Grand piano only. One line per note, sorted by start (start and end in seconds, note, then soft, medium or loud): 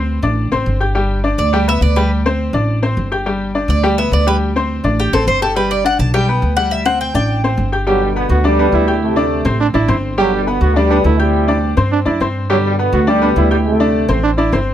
0.00 0.18 C4 medium
0.00 0.18 C5 medium
0.00 0.18 C6 medium
0.23 0.47 D4 medium
0.23 0.47 D5 medium
0.23 0.47 D6 medium
0.52 0.75 C4 medium
0.52 0.76 C5 medium
0.52 0.76 C6 medium
0.80 0.92 G4 medium
0.80 0.92 G5 medium
0.80 0.93 G6 medium
0.95 1.18 G3 medium
0.95 1.19 G4 medium
0.95 1.19 G5 medium
1.24 1.47 D4 medium
1.24 1.47 D5 medium
1.24 1.48 D6 medium
1.53 1.65 G3 medium
1.53 1.65 G4 medium
1.53 1.65 G5 loud
1.68 1.91 B3 medium
1.68 1.91 B4 medium
1.68 1.91 B5 medium
1.97 2.20 G3 medium
1.97 2.20 G4 medium
1.97 2.20 G5 medium
2.26 2.49 C4 medium
2.26 2.49 C5 medium
2.26 2.49 C6 medium
2.54 2.77 D4 medium
2.54 2.77 D5 medium
2.54 2.78 D6 medium
2.82 3.06 C4 medium
2.82 3.06 C5 medium
2.82 3.06 C6 medium
3.12 3.23 G4 medium
3.12 3.23 G5 medium
3.12 3.23 G6 medium
3.26 3.49 G3 medium
3.26 3.50 G4 medium
3.26 3.50 G5 medium
3.55 3.78 D4 medium
3.55 3.78 D5 medium
3.55 3.78 D6 medium
3.83 3.95 G3 medium
3.83 3.95 G4 medium
3.83 3.95 G5 medium
3.98 4.21 B3 medium
3.98 4.21 B4 medium
3.98 4.22 B5 medium
4.27 4.50 G3 medium
4.27 4.50 G4 medium
4.27 4.50 G5 medium
4.56 4.79 C4 medium
4.56 4.79 C5 medium
4.56 4.80 C6 medium
4.84 5.08 D4 medium
4.84 5.08 D5 medium
4.84 5.08 D6 medium
5.13 5.37 C4 medium
5.13 5.37 C5 medium
5.13 5.37 C6 medium
5.42 5.54 G4 medium
5.42 5.54 G5 medium
5.42 5.54 G6 medium
5.56 5.80 G3 medium
5.56 5.80 G4 medium
5.56 5.80 G5 medium
5.84 6.08 D4 medium
5.84 6.08 D5 medium
5.84 6.09 D6 medium
6.14 6.26 G3 loud
6.14 6.26 G4 loud
6.14 6.26 G5 medium
6.28 6.52 B3 medium
6.28 6.52 B4 medium
6.28 6.52 B5 medium
6.57 6.81 G3 medium
6.57 6.81 G4 medium
6.57 6.81 G5 medium
6.85 7.09 C4 medium
6.85 7.09 C5 medium
6.85 7.10 C6 medium
7.14 7.38 D4 medium
7.14 7.38 D5 medium
7.14 7.39 D6 medium
7.44 7.67 C4 medium
7.44 7.68 C5 medium
7.44 7.68 C6 medium
7.72 7.84 G4 medium
7.72 7.84 G5 medium
7.72 7.85 G6 medium
7.87 8.10 G3 medium
7.87 8.11 G4 medium
7.87 8.11 G5 medium
8.16 8.39 B3 medium
8.16 8.40 B4 medium
8.16 8.40 B5 medium
8.44 8.56 D4 medium
8.44 8.56 D5 medium
8.44 8.57 D6 medium
8.59 8.83 B3 medium
8.59 8.83 B4 medium
8.59 8.83 B5 medium
8.88 9.11 G4 medium
8.88 9.11 G5 medium
8.88 9.12 G6 medium
9.16 9.40 D4 medium
9.16 9.40 D5 medium
9.16 9.40 D6 medium
9.45 9.69 C4 medium
9.45 9.69 C5 medium
9.45 9.69 C6 medium
9.74 9.86 D4 medium
9.74 9.86 D5 medium
9.74 9.87 D6 medium
9.88 10.12 C4 medium
9.88 10.12 C5 medium
9.88 10.13 C6 medium
10.18 10.41 G3 medium
10.18 10.42 G4 medium
10.18 10.42 G5 medium
10.47 10.71 B3 medium
10.47 10.71 B4 medium
10.47 10.71 B5 medium
10.76 10.88 D4 medium
10.76 10.88 D5 medium
10.76 10.88 D6 medium
10.90 11.14 B3 medium
10.90 11.14 B4 medium
10.90 11.14 B5 medium
11.19 11.43 G4 medium
11.19 11.43 G5 medium
11.19 11.43 G6 medium
11.48 11.72 D4 medium
11.48 11.72 D5 medium
11.48 11.72 D6 medium
11.77 12.01 C4 medium
11.77 12.01 C5 medium
11.77 12.01 C6 medium
12.05 12.17 D4 medium
12.05 12.18 D5 medium
12.05 12.18 D6 medium
12.21 12.44 C4 medium
12.21 12.45 C5 medium
12.21 12.45 C6 medium
12.50 12.73 G3 medium
12.50 12.73 G4 medium
12.50 12.74 G5 medium
12.79 13.02 B3 medium
12.79 13.03 B4 medium
12.79 13.03 B5 medium
13.07 13.19 D4 medium
13.07 13.19 D5 medium
13.07 13.20 D6 medium
13.21 13.45 B3 medium
13.21 13.46 B4 medium
13.21 13.46 B5 medium
13.51 13.75 G4 medium
13.51 13.75 G5 medium
13.51 13.75 G6 medium
13.80 14.04 D4 medium
13.80 14.04 D5 medium
13.80 14.04 D6 medium
14.09 14.32 C4 medium
14.09 14.33 C5 medium
14.09 14.33 C6 medium
14.38 14.50 D4 medium
14.38 14.50 D5 medium
14.38 14.50 D6 medium
14.53 14.74 C4 medium
14.53 14.74 C5 medium
14.53 14.74 C6 medium